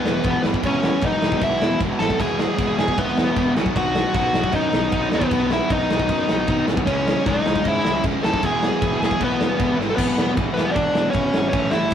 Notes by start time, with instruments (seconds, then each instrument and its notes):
Already playing: distorted electric guitar E3 G#3 B3 E4, lead electric guitar B3 B4
0.05 picked electric bass E1, overdriven electric guitar E2 B2 E3, snare
0.23 picked electric bass E1, overdriven electric guitar E2 B2 E3, kick, crash
0.42 picked electric bass G#1, overdriven electric guitar E2 B2 E3, distorted electric guitar E3 G#3 B3 E4, snare
0.54 kick
0.61 picked electric bass E1, overdriven electric guitar E2 B2 E3, distorted electric guitar E3 G#3 B3, kick, crash
0.65 lead electric guitar C#4 C#5, distorted electric guitar E4
0.83 overdriven electric guitar E2 B2 E3, snare
1.01 picked electric bass E1, overdriven electric guitar E2 B2 E3, kick, crash
1.06 lead electric guitar D#4 D#5
1.22 picked electric bass E1, overdriven electric guitar E2 B2 E3, snare
1.32 kick
1.41 picked electric bass B1, overdriven electric guitar E2 B2 E3, lead electric guitar E4 E5, kick, crash
1.61 picked electric bass E1, overdriven electric guitar E2 B2 E3, snare
1.80 picked electric bass E1, overdriven electric guitar E2 B2 E3, kick, crash
1.98 picked electric bass G#1, overdriven electric guitar E2 B2 E3, distorted electric guitar E3 G#3 B3 E4, lead electric guitar A4 A5, snare
2.10 kick
2.17 picked electric bass E1, overdriven electric guitar E2 B2 E3, distorted electric guitar E3 G#3 B3, kick, crash
2.21 distorted electric guitar E4, lead electric guitar G#4 G#5
2.38 overdriven electric guitar E2 B2 E3, snare
2.58 picked electric bass E1, overdriven electric guitar E2 B2 E3, kick, crash
2.78 picked electric bass E1, overdriven electric guitar E2 B2 E3, lead electric guitar G#4 G#5, snare
2.88 kick
2.98 picked electric bass B1, overdriven electric guitar E2 B2 E3, lead electric guitar B3 B4, kick, crash
3.17 picked electric bass E1, overdriven electric guitar E2 B2 E3, snare
3.36 picked electric bass E1, overdriven electric guitar E2 B2 E3, kick, crash
3.53 picked electric bass B1, distorted electric guitar B2 D#3 F#3 B3, overdriven electric guitar B2 F#3 B3, snare
3.58 distorted electric guitar D#4
3.66 kick
3.76 picked electric bass B1, overdriven electric guitar B2 F#3 B3, lead electric guitar F#4 F#5, kick, crash
3.95 overdriven electric guitar B2 F#3 B3, snare
4.14 picked electric bass B1, overdriven electric guitar B2 F#3 B3, lead electric guitar F#4 F#5, kick, crash
4.34 picked electric bass B1, overdriven electric guitar B2 F#3 B3, snare
4.44 kick
4.52 picked electric bass F#2, overdriven electric guitar B2 F#3 B3, lead electric guitar D#4 D#5, kick, crash
4.73 picked electric bass B1, overdriven electric guitar B2 F#3 B3, snare
4.91 picked electric bass B1, distorted electric guitar B2 D#3 F#3 B3 D#4, kick, crash
4.95 overdriven electric guitar B2 F#3 B3
5.10 distorted electric guitar B2 D#3 F#3 B3 D#4, overdriven electric guitar B2 F#3, snare
5.14 picked electric bass D#2, lead electric guitar B3 B4, overdriven electric guitar B3
5.21 kick
5.31 picked electric bass B1, overdriven electric guitar B2 F#3 B3, kick, crash
5.51 overdriven electric guitar B2 F#3 B3, lead electric guitar E4 E5, snare
5.70 picked electric bass B1, overdriven electric guitar B2 F#3 B3, lead electric guitar D#4 D#5, kick, crash
5.89 picked electric bass B1, overdriven electric guitar B2 F#3 B3, snare
5.99 kick
6.09 picked electric bass F#2, overdriven electric guitar B2 F#3 B3, kick, crash
6.29 picked electric bass B1, overdriven electric guitar B2 F#3 B3, snare
6.46 picked electric bass B1, distorted electric guitar B2 D#3 F#3 B3 D#4, overdriven electric guitar B2 F#3 B3, kick, crash
6.66 picked electric bass B1, overdriven electric guitar B2 F#3 B3, snare
6.77 kick
6.85 picked electric bass C#2, distorted electric guitar C#3 G#3 C#4, overdriven electric guitar C#3 G#3 C#4, lead electric guitar C#4 C#5, kick, crash
6.89 distorted electric guitar E4
7.06 overdriven electric guitar C#3 G#3 C#4, snare
7.26 picked electric bass C#2, overdriven electric guitar C#3 G#3 C#4, lead electric guitar D#4 D#5, kick, crash
7.46 picked electric bass C#2, overdriven electric guitar C#3 G#3 C#4, snare
7.56 kick
7.65 picked electric bass G#2, overdriven electric guitar C#3 G#3 C#4, lead electric guitar E4 E5, kick, crash
7.85 picked electric bass C#2, overdriven electric guitar C#3 G#3 C#4, snare
8.04 picked electric bass C#2, overdriven electric guitar C#3 G#3 C#4, kick, crash
8.22 picked electric bass D#2, overdriven electric guitar C#3 G#3 C#4, distorted electric guitar G#3 C#4 E4, lead electric guitar A4 A5, snare
8.26 distorted electric guitar C#3
8.34 kick
8.41 picked electric bass E1, overdriven electric guitar E2 B2, distorted electric guitar E3 G#3 B3 E4, lead electric guitar G#4, kick, crash
8.45 overdriven electric guitar E3, lead electric guitar G#5
8.63 overdriven electric guitar E2 B2 E3, snare
8.82 picked electric bass E1, overdriven electric guitar E2 B2 E3, kick, crash
9.02 picked electric bass E1, overdriven electric guitar E2 B2 E3, lead electric guitar G#4 G#5, snare
9.11 kick
9.20 picked electric bass B1, overdriven electric guitar E2 B2 E3, lead electric guitar B3 B4, kick, crash
9.40 picked electric bass E1, overdriven electric guitar E2 B2 E3, snare
9.60 picked electric bass E1, overdriven electric guitar E2 B2 E3, kick, crash
9.77 picked electric bass G#1, overdriven electric guitar E2 B2, distorted electric guitar E3 G#3 B3 E4, snare
9.81 overdriven electric guitar E3
9.90 lead electric guitar A4
9.96 picked electric bass E1, overdriven electric guitar E2 B2 E3, lead electric guitar B3 B4, kick, crash
10.17 picked electric bass E1, overdriven electric guitar E2 B2 E3, snare
10.37 picked electric bass E1, overdriven electric guitar E2 B2 E3, kick, ride
10.54 picked electric bass E1, overdriven electric guitar E2 B2 E3, lead electric guitar B3 B4, snare
10.71 lead electric guitar D5
10.75 picked electric bass E1, overdriven electric guitar E2 B2 E3, lead electric guitar D4, kick, ride
10.95 overdriven electric guitar E2 B2 E3, snare
11.10 picked electric bass E1, lead electric guitar C#5, ride
11.14 overdriven electric guitar E2 B2 E3, lead electric guitar C#4, kick
11.34 picked electric bass G#1, overdriven electric guitar E2 B2 E3, snare
11.49 lead electric guitar C#5, ride
11.53 picked electric bass A1, overdriven electric guitar A2 E3 A3, lead electric guitar C#4, kick
11.70 picked electric bass A1, overdriven electric guitar A2, lead electric guitar E4 E5, snare
11.74 overdriven electric guitar E3 A3
11.91 ride